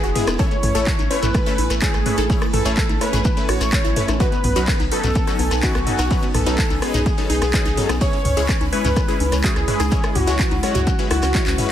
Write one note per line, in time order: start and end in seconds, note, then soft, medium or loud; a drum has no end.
0.00 0.14 E1 medium
0.00 0.36 G#3 medium
0.00 0.37 C#4 medium
0.00 4.16 E4 medium
0.00 0.10 F#4 medium
0.00 0.30 G#4 medium
0.00 11.72 B4 medium
0.00 11.72 G#5 medium
0.00 closed hi-hat soft
0.04 shekere soft
0.15 0.26 G#3 medium
0.15 0.21 B3 medium
0.15 0.26 B3 medium
0.15 0.26 E4 medium
0.15 0.26 G#4 loud
0.15 mid tom medium
0.15 open hi-hat loud
0.27 0.37 E1 medium
0.27 0.33 B3 medium
0.27 cross-stick medium
0.27 closed hi-hat medium
0.27 high conga medium
0.27 shekere medium
0.39 0.56 A3 medium
0.39 4.16 A3 medium
0.39 0.56 C#4 medium
0.39 11.72 C#4 medium
0.39 0.56 E4 medium
0.39 0.45 A4 loud
0.39 1.12 C#5 loud
0.39 0.56 C#5 medium
0.39 1.11 C#5 loud
0.39 kick loud
0.39 closed hi-hat medium
0.39 shekere medium
0.51 0.57 A3 medium
0.51 closed hi-hat soft
0.51 shekere soft
0.63 0.73 A1 loud
0.63 0.69 A3 medium
0.63 mid tom loud
0.63 open hi-hat loud
0.75 0.85 A1 medium
0.75 0.86 A3 medium
0.75 0.86 C#4 medium
0.75 0.86 E4 medium
0.75 0.81 A4 loud
0.75 0.86 C#5 loud
0.75 closed hi-hat medium
0.75 shekere medium
0.87 0.93 A3 medium
0.87 kick loud
0.87 cross-stick soft
0.87 clap loud
0.87 closed hi-hat medium
0.87 shekere medium
0.99 1.09 A1 medium
0.99 1.05 A3 medium
0.99 closed hi-hat soft
0.99 high conga medium
0.99 shekere soft
1.10 1.28 A3 medium
1.10 1.28 C#4 medium
1.10 1.28 E4 medium
1.10 1.73 B4 loud
1.10 1.17 C#5 medium
1.10 1.28 C#5 loud
1.10 open hi-hat loud
1.23 1.33 A1 medium
1.23 1.29 A3 medium
1.23 closed hi-hat medium
1.23 mid tom medium
1.23 shekere medium
1.34 1.40 A3 medium
1.34 kick loud
1.34 cross-stick medium
1.34 closed hi-hat soft
1.34 shekere medium
1.46 1.57 A3 loud
1.46 1.57 C#4 medium
1.46 1.57 E4 medium
1.46 1.52 A4 loud
1.46 1.57 B4 loud
1.46 closed hi-hat soft
1.46 shekere soft
1.58 1.68 A1 loud
1.58 1.64 A3 medium
1.58 open hi-hat loud
1.58 high conga medium
1.70 1.80 A1 medium
1.70 1.76 A3 medium
1.70 cross-stick medium
1.70 closed hi-hat medium
1.70 shekere medium
1.82 1.93 A3 medium
1.82 1.93 C#4 medium
1.82 1.93 E4 medium
1.82 1.88 G#4 loud
1.82 2.44 G#4 medium
1.82 1.93 C#5 medium
1.82 kick loud
1.82 clap loud
1.82 closed hi-hat medium
1.82 shekere medium
1.94 2.04 A1 medium
1.94 2.00 A3 medium
1.94 cross-stick soft
1.94 closed hi-hat soft
1.94 shekere soft
2.06 2.12 A3 medium
2.06 2.17 A3 medium
2.06 2.17 C#4 medium
2.06 2.17 E4 medium
2.06 2.17 B4 loud
2.06 mid tom medium
2.06 open hi-hat loud
2.18 2.28 A1 medium
2.18 2.24 A4 loud
2.18 cross-stick medium
2.18 closed hi-hat medium
2.18 high conga medium
2.18 shekere medium
2.30 2.36 A3 medium
2.30 2.47 A3 medium
2.30 2.47 C#4 medium
2.30 2.47 E4 medium
2.30 2.47 C#5 medium
2.30 kick loud
2.30 closed hi-hat soft
2.30 shekere medium
2.42 2.48 A3 medium
2.42 cross-stick medium
2.42 closed hi-hat soft
2.42 shekere soft
2.53 2.64 A1 loud
2.53 2.59 A3 medium
2.53 3.03 A4 medium
2.53 3.01 A4 medium
2.53 mid tom loud
2.53 open hi-hat loud
2.65 2.75 A1 medium
2.65 2.76 A3 loud
2.65 2.76 C#4 medium
2.65 2.76 E4 medium
2.65 2.71 G#4 medium
2.65 2.76 C#5 loud
2.65 closed hi-hat medium
2.65 shekere medium
2.77 2.83 A3 medium
2.77 kick loud
2.77 clap loud
2.77 closed hi-hat medium
2.77 shekere medium
2.89 2.99 A1 medium
2.89 2.95 A3 medium
2.89 closed hi-hat soft
2.89 high conga medium
2.89 shekere soft
3.01 3.07 A3 medium
3.01 3.18 A3 medium
3.01 3.18 C#4 medium
3.01 3.18 E4 medium
3.01 3.44 B4 medium
3.01 3.18 C#5 medium
3.01 cross-stick soft
3.01 open hi-hat loud
3.13 3.23 A1 medium
3.13 3.19 G#4 medium
3.13 closed hi-hat medium
3.13 mid tom medium
3.13 shekere medium
3.25 3.31 A3 medium
3.25 kick loud
3.25 closed hi-hat soft
3.25 shekere medium
3.37 3.43 A3 medium
3.37 3.48 A3 loud
3.37 3.48 C#4 medium
3.37 3.48 E4 medium
3.37 3.48 B4 loud
3.37 closed hi-hat soft
3.37 shekere soft
3.49 3.59 A1 medium
3.49 3.55 F#4 loud
3.49 4.11 C#5 medium
3.49 cross-stick medium
3.49 open hi-hat loud
3.49 high conga medium
3.61 3.71 A1 medium
3.61 3.67 A3 medium
3.61 cross-stick medium
3.61 closed hi-hat soft
3.61 shekere medium
3.72 3.79 A3 medium
3.72 3.83 A3 medium
3.72 3.83 C#4 medium
3.72 3.83 E4 medium
3.72 3.83 C#5 loud
3.72 kick loud
3.72 clap loud
3.72 closed hi-hat medium
3.72 shekere medium
3.85 3.95 A1 medium
3.85 3.90 E4 medium
3.85 closed hi-hat soft
3.85 shekere soft
3.96 4.02 A3 medium
3.96 4.07 A3 medium
3.96 4.07 C#4 medium
3.96 4.07 E4 medium
3.96 4.07 B4 loud
3.96 mid tom medium
3.96 open hi-hat loud
4.08 4.18 A1 medium
4.08 4.14 A3 medium
4.08 cross-stick medium
4.08 cross-stick soft
4.08 closed hi-hat soft
4.08 high conga medium
4.08 shekere medium
4.20 4.37 F#3 medium
4.20 7.97 B3 medium
4.20 4.37 C#4 medium
4.20 7.97 D#4 medium
4.20 4.37 D#4 medium
4.20 4.26 F#4 loud
4.20 4.82 B4 loud
4.20 4.37 B4 medium
4.20 4.82 B4 loud
4.20 kick loud
4.20 cross-stick soft
4.20 closed hi-hat soft
4.20 shekere medium
4.32 4.38 B3 medium
4.32 closed hi-hat soft
4.32 shekere soft
4.44 4.54 B1 loud
4.44 4.50 B3 medium
4.44 mid tom medium
4.44 open hi-hat loud
4.56 4.66 B1 medium
4.56 4.67 F#3 medium
4.56 4.67 C#4 medium
4.56 4.67 D#4 medium
4.56 4.62 F#4 loud
4.56 4.67 B4 loud
4.56 closed hi-hat soft
4.56 shekere medium
4.68 4.74 B3 medium
4.68 kick loud
4.68 cross-stick medium
4.68 clap loud
4.68 closed hi-hat medium
4.68 shekere medium
4.80 4.90 B1 medium
4.80 4.86 B3 medium
4.80 closed hi-hat soft
4.80 high conga medium
4.80 shekere soft
4.92 5.09 F#3 medium
4.92 5.09 C#4 medium
4.92 5.09 D#4 medium
4.92 4.98 A4 medium
4.92 5.54 A4 loud
4.92 5.09 B4 medium
4.92 open hi-hat loud
5.04 5.14 B1 medium
5.04 5.10 B3 medium
5.04 closed hi-hat medium
5.04 mid tom medium
5.04 shekere medium
5.15 5.21 B3 medium
5.15 kick loud
5.15 closed hi-hat soft
5.15 shekere medium
5.27 5.38 F#3 loud
5.27 5.38 C#4 medium
5.27 5.38 D#4 medium
5.27 5.33 F#4 medium
5.27 5.38 A4 loud
5.27 cross-stick soft
5.27 closed hi-hat soft
5.27 shekere soft
5.39 5.49 B1 medium
5.39 5.45 B3 medium
5.39 open hi-hat loud
5.39 high conga medium
5.51 5.61 B1 medium
5.51 5.57 B3 medium
5.51 cross-stick medium
5.51 closed hi-hat medium
5.51 shekere medium
5.63 5.74 F#3 medium
5.63 5.74 C#4 medium
5.63 5.69 D#4 medium
5.63 5.74 D#4 medium
5.63 6.25 F#4 loud
5.63 6.25 F#4 medium
5.63 5.74 B4 medium
5.63 kick loud
5.63 clap loud
5.63 closed hi-hat medium
5.63 shekere medium
5.75 5.85 B1 medium
5.75 5.81 B3 medium
5.75 cross-stick medium
5.75 closed hi-hat soft
5.75 shekere soft
5.87 5.98 F#3 medium
5.87 5.93 B3 medium
5.87 5.98 C#4 medium
5.87 5.98 D#4 medium
5.87 5.98 A4 loud
5.87 mid tom medium
5.87 open hi-hat loud
5.98 6.09 B1 medium
5.98 6.05 F#4 medium
5.98 cross-stick medium
5.98 closed hi-hat medium
5.98 high conga medium
5.98 shekere medium
6.11 6.28 F#3 medium
6.11 6.17 B3 medium
6.11 6.28 C#4 medium
6.11 6.28 D#4 medium
6.11 6.28 B4 medium
6.11 kick loud
6.11 closed hi-hat medium
6.11 shekere medium
6.22 6.29 B3 medium
6.22 closed hi-hat soft
6.22 shekere soft
6.34 6.45 B1 loud
6.34 6.40 B3 medium
6.34 6.77 A4 medium
6.34 cross-stick soft
6.34 mid tom medium
6.34 open hi-hat loud
6.46 6.57 B1 medium
6.46 6.57 F#3 loud
6.46 6.57 C#4 medium
6.46 6.52 D#4 medium
6.46 6.57 D#4 medium
6.46 6.57 B4 loud
6.46 closed hi-hat medium
6.46 shekere medium
6.58 6.64 B3 medium
6.58 kick loud
6.58 clap loud
6.58 closed hi-hat medium
6.58 shekere medium
6.70 6.80 B1 medium
6.70 6.76 B3 medium
6.70 closed hi-hat soft
6.70 high conga medium
6.70 shekere soft
6.82 6.99 F#3 medium
6.82 6.88 B3 medium
6.82 6.99 C#4 medium
6.82 6.99 D#4 medium
6.82 7.25 G#4 medium
6.82 7.25 G#4 loud
6.82 6.99 B4 loud
6.82 cross-stick medium
6.82 open hi-hat loud
6.94 7.04 B1 medium
6.94 7.00 D#4 loud
6.94 closed hi-hat medium
6.94 mid tom medium
6.94 shekere medium
7.06 7.12 B3 medium
7.06 kick loud
7.06 closed hi-hat medium
7.06 shekere medium
7.18 7.29 F#3 medium
7.18 7.24 B3 medium
7.18 7.29 C#4 medium
7.18 7.29 D#4 medium
7.18 7.29 A4 loud
7.18 closed hi-hat soft
7.18 shekere soft
7.30 7.40 B1 loud
7.30 7.36 D#4 loud
7.30 7.92 G#4 loud
7.30 open hi-hat loud
7.30 high conga medium
7.42 7.52 B1 medium
7.42 7.48 B3 medium
7.42 cross-stick soft
7.42 cross-stick medium
7.42 closed hi-hat medium
7.42 shekere medium
7.53 7.64 F#3 medium
7.53 7.60 B3 medium
7.53 7.64 C#4 medium
7.53 7.64 D#4 medium
7.53 7.64 B4 loud
7.53 kick loud
7.53 clap loud
7.53 closed hi-hat medium
7.53 shekere medium
7.65 7.76 B1 medium
7.65 7.71 D#4 medium
7.65 closed hi-hat soft
7.65 shekere soft
7.77 7.88 F#3 medium
7.77 7.83 B3 medium
7.77 7.88 C#4 medium
7.77 7.88 D#4 medium
7.77 7.88 A4 loud
7.77 mid tom medium
7.77 open hi-hat loud
7.89 7.99 B1 medium
7.89 7.95 B3 medium
7.89 cross-stick medium
7.89 closed hi-hat medium
7.89 high conga loud
7.89 shekere medium
8.01 11.72 G#3 medium
8.01 8.18 G#3 medium
8.01 8.18 C#4 medium
8.01 11.72 E4 medium
8.01 8.18 E4 medium
8.01 8.07 G#4 loud
8.01 8.63 C#5 loud
8.01 8.18 C#5 medium
8.01 kick loud
8.01 closed hi-hat medium
8.01 shekere medium
8.13 8.19 C#4 medium
8.13 closed hi-hat soft
8.13 shekere soft
8.25 8.35 C#2 loud
8.25 8.31 C#4 medium
8.25 mid tom medium
8.25 open hi-hat loud
8.37 8.47 C#2 medium
8.37 8.48 G#3 medium
8.37 8.48 C#4 medium
8.37 8.48 E4 medium
8.37 8.43 G#4 loud
8.37 8.48 C#5 loud
8.37 closed hi-hat medium
8.37 shekere medium
8.49 8.55 C#4 medium
8.49 kick loud
8.49 cross-stick soft
8.49 clap loud
8.49 closed hi-hat medium
8.49 shekere medium
8.61 8.71 C#2 medium
8.61 8.67 C#4 medium
8.61 closed hi-hat soft
8.61 high conga loud
8.61 shekere soft
8.72 8.90 G#3 medium
8.72 8.90 C#4 medium
8.72 8.90 E4 medium
8.72 9.35 B4 loud
8.72 8.79 B4 medium
8.72 9.35 B4 loud
8.72 8.90 C#5 medium
8.72 open hi-hat loud
8.85 8.95 C#2 medium
8.85 8.91 C#4 medium
8.85 closed hi-hat medium
8.85 mid tom medium
8.85 shekere medium
8.96 9.02 C#4 medium
8.96 kick loud
8.96 cross-stick medium
8.96 closed hi-hat medium
8.96 shekere medium
9.08 9.19 G#3 loud
9.08 9.19 C#4 medium
9.08 9.19 E4 medium
9.08 9.14 G#4 loud
9.08 9.19 B4 loud
9.08 closed hi-hat soft
9.08 shekere soft
9.20 9.30 C#2 medium
9.20 9.26 C#4 medium
9.20 open hi-hat loud
9.20 high conga medium
9.32 9.42 C#2 medium
9.32 9.38 C#4 medium
9.32 cross-stick medium
9.32 closed hi-hat medium
9.32 shekere medium
9.44 9.55 G#3 medium
9.44 9.55 C#4 medium
9.44 9.55 E4 medium
9.44 9.50 F#4 loud
9.44 10.17 G#4 loud
9.44 10.15 G#4 medium
9.44 9.55 C#5 medium
9.44 kick loud
9.44 clap loud
9.44 closed hi-hat medium
9.44 shekere medium
9.56 9.66 C#2 medium
9.56 9.62 C#4 medium
9.56 cross-stick soft
9.56 closed hi-hat soft
9.56 shekere soft
9.68 9.79 G#3 medium
9.68 9.74 C#4 medium
9.68 9.79 C#4 medium
9.68 9.79 E4 medium
9.68 9.79 B4 loud
9.68 mid tom medium
9.68 open hi-hat loud
9.80 9.90 C#2 medium
9.80 9.86 G#4 loud
9.80 cross-stick medium
9.80 closed hi-hat medium
9.80 high conga loud
9.80 shekere medium
9.91 10.09 G#3 medium
9.91 9.98 C#4 medium
9.91 10.09 C#4 medium
9.91 10.09 E4 medium
9.91 10.09 C#5 medium
9.91 kick loud
9.91 closed hi-hat medium
9.91 shekere medium
10.04 10.10 C#4 medium
10.04 cross-stick medium
10.04 closed hi-hat soft
10.04 shekere soft
10.15 10.26 C#2 loud
10.15 10.21 C#4 medium
10.15 10.58 F#4 medium
10.15 mid tom medium
10.15 open hi-hat loud
10.27 10.38 C#2 medium
10.27 10.38 G#3 loud
10.27 10.38 C#4 medium
10.27 10.38 E4 medium
10.27 10.33 F#4 loud
10.27 10.38 C#5 loud
10.27 closed hi-hat medium
10.27 shekere medium
10.39 10.45 C#4 medium
10.39 kick loud
10.39 clap loud
10.39 closed hi-hat medium
10.39 shekere medium
10.51 10.61 C#2 medium
10.51 10.57 C#4 medium
10.51 closed hi-hat soft
10.51 high conga loud
10.51 shekere soft
10.63 10.80 G#3 medium
10.63 10.69 C#4 medium
10.63 10.80 C#4 medium
10.63 10.80 E4 medium
10.63 11.06 F#4 loud
10.63 11.06 F#4 medium
10.63 10.80 C#5 medium
10.63 cross-stick soft
10.63 open hi-hat loud
10.75 10.85 C#2 medium
10.75 10.81 F#4 loud
10.75 closed hi-hat medium
10.75 mid tom medium
10.75 shekere medium
10.87 10.93 C#4 medium
10.87 kick loud
10.87 closed hi-hat medium
10.87 shekere medium
10.99 11.10 G#3 loud
10.99 11.05 C#4 medium
10.99 11.10 C#4 medium
10.99 11.10 E4 medium
10.99 11.10 B4 loud
10.99 closed hi-hat soft
10.99 shekere soft
11.11 11.21 C#2 loud
11.11 11.17 E4 medium
11.11 11.72 F#4 loud
11.11 cross-stick medium
11.11 open hi-hat loud
11.11 high conga medium
11.22 11.33 C#2 medium
11.22 11.29 C#4 medium
11.22 cross-stick medium
11.22 open hi-hat medium
11.22 shekere medium
11.34 11.45 G#3 medium
11.34 11.41 C#4 medium
11.34 11.45 C#4 medium
11.34 11.45 E4 medium
11.34 11.45 C#5 loud
11.34 kick loud
11.34 clap loud
11.34 closed hi-hat medium
11.34 shekere medium
11.46 11.57 C#2 medium
11.46 11.52 C#4 medium
11.46 clap medium
11.46 closed hi-hat soft
11.46 shekere soft
11.58 11.69 G#3 medium
11.58 11.64 C#4 medium
11.58 11.69 C#4 medium
11.58 11.69 E4 medium
11.58 11.69 B4 loud
11.58 mid tom medium
11.58 open hi-hat loud